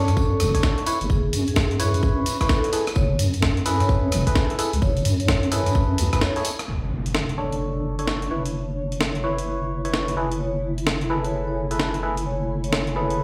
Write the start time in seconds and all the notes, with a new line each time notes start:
Already playing: D4 A4 C#5
0.08 F#2 A4, cross-stick, closed hi-hat, tambourine
0.17 kick, tambourine
0.31 A4
0.40 E1, cross-stick, open hi-hat, tambourine
0.54 D4 A4 C#5, kick, closed hi-hat, tambourine
0.63 kick, snare, tambourine
0.78 closed hi-hat
0.86 E4 B4 C#5, open hi-hat, tambourine
1.01 F#1, closed hi-hat, tambourine
1.10 F#1 G#4, kick, tambourine
1.33 F#2, open hi-hat, tambourine
1.47 G#4, closed hi-hat, tambourine
1.56 kick, snare, tambourine
1.71 closed hi-hat
1.80 E4 G#4 B4 C#5, open hi-hat, tambourine
1.94 F#2, closed hi-hat, tambourine
2.03 kick, tambourine
2.26 open hi-hat, tambourine
2.40 E4 B4 C#5, kick, cross-stick, closed hi-hat, tambourine
2.49 A4, kick, snare, tambourine
2.64 closed hi-hat
2.73 E4 G#4 A4 B4, open hi-hat, tambourine
2.87 cross-stick, closed hi-hat, tambourine
2.95 F#1 C#5, kick, tambourine
3.19 F#2, open hi-hat, tambourine
3.33 closed hi-hat, tambourine
3.42 kick, snare, tambourine
3.57 closed hi-hat
3.66 E4 G#4 A4 B4, open hi-hat, tambourine
3.80 F#2 C#5, cross-stick, closed hi-hat, tambourine
3.89 kick, tambourine
4.04 C#5
4.12 E1, cross-stick, open hi-hat, tambourine
4.27 E4 G#4 A4 B4, kick, closed hi-hat, tambourine
4.35 kick, snare, tambourine
4.50 closed hi-hat
4.59 E4 G#4 A4 B4, open hi-hat, tambourine
4.73 C#2, closed hi-hat, tambourine
4.82 F#1 C#5, kick, tambourine
4.97 closed hi-hat, tambourine
5.05 F#2, open hi-hat, tambourine
5.20 C#5, closed hi-hat, tambourine
5.28 kick, snare, tambourine
5.43 closed hi-hat
5.52 E4 G#4 A4 B4 C#5, open hi-hat, tambourine
5.66 F#2, cross-stick, closed hi-hat, tambourine
5.75 kick, tambourine
5.98 C#2, open hi-hat, tambourine
6.13 F#2 E4 G#4 A4 B4, kick, cross-stick, closed hi-hat, tambourine
6.21 C#5, snare, tambourine
6.36 E4 G#4 A4 C#5, closed hi-hat, tambourine
6.45 open hi-hat, tambourine
6.59 cross-stick, closed hi-hat, tambourine
6.68 F#1 D4, impact
7.06 C#5, closed hi-hat
7.15 snare
7.29 closed hi-hat
7.38 D4 A4 C#5
7.52 closed hi-hat
7.99 D4 A4 C#5, closed hi-hat
8.08 snare
8.22 closed hi-hat
8.31 F#1 E4 B4 C#5
8.46 closed hi-hat
8.92 closed hi-hat
9.01 snare
9.15 B5, closed hi-hat
9.24 E4 B4 C#5
9.38 closed hi-hat
9.85 E4 B4 C#5, closed hi-hat
9.94 snare
10.08 closed hi-hat
10.17 F#1 E4 G#4 A4 B4
10.32 closed hi-hat
10.40 C#5 G#5
10.55 A3
10.78 closed hi-hat
10.87 snare
11.01 closed hi-hat
11.10 E4 G#4 A4 B4
11.25 C#5, closed hi-hat
11.48 C#5
11.71 E4 G#4 A4 B4, closed hi-hat
11.80 snare
11.94 closed hi-hat
12.03 E4 G#4 A4 B4
12.17 closed hi-hat
12.26 C#5
12.64 C#5, closed hi-hat
12.73 snare
12.87 closed hi-hat
12.96 E4 G#4 A4 B4 C#5
13.10 closed hi-hat